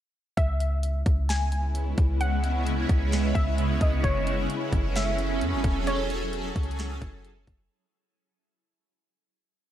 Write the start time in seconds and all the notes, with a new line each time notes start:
0.37 C#2 C#3 G#3 B3 C#4 E4 E5, kick, closed hi-hat
0.60 closed hi-hat
0.83 closed hi-hat
1.06 C#2, kick, closed hi-hat
1.29 G#5, snare, closed hi-hat
1.52 closed hi-hat
1.75 closed hi-hat
1.98 C#2, kick, closed hi-hat
2.21 F#5, closed hi-hat
2.44 closed hi-hat
2.67 closed hi-hat
2.89 C#2, kick, closed hi-hat
3.12 snare, closed hi-hat
3.35 C#2 E5, kick, closed hi-hat
3.58 closed hi-hat
3.81 C#2 D#5, kick, closed hi-hat
4.03 F#1 F#3 C#4 G#4 A4 C#5, kick, closed hi-hat
4.27 closed hi-hat
4.50 closed hi-hat
4.73 F#1, kick, closed hi-hat
4.96 E5, snare, closed hi-hat
5.18 closed hi-hat
5.41 F#2, closed hi-hat
5.53 F#1
5.64 E1, kick, closed hi-hat
5.87 C#5, closed hi-hat
6.10 closed hi-hat
6.33 closed hi-hat
6.56 C#2, kick, closed hi-hat
6.63 closed hi-hat
6.71 closed hi-hat
6.79 snare, closed hi-hat
7.02 F#1, kick, closed hi-hat
7.25 closed hi-hat
7.47 F#1, kick, closed hi-hat